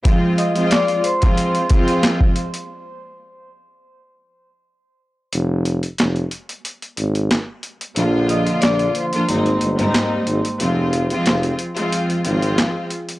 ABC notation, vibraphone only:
X:1
M:4/4
L:1/8
Q:"Swing 16ths" 1/4=91
K:Fdor
V:1 name="Vibraphone"
z [ee'] [dd'] [cc']3 z2 | z8 | z8 | z [ee'] [dd'] [cc']4- [cc'] |
z8 |]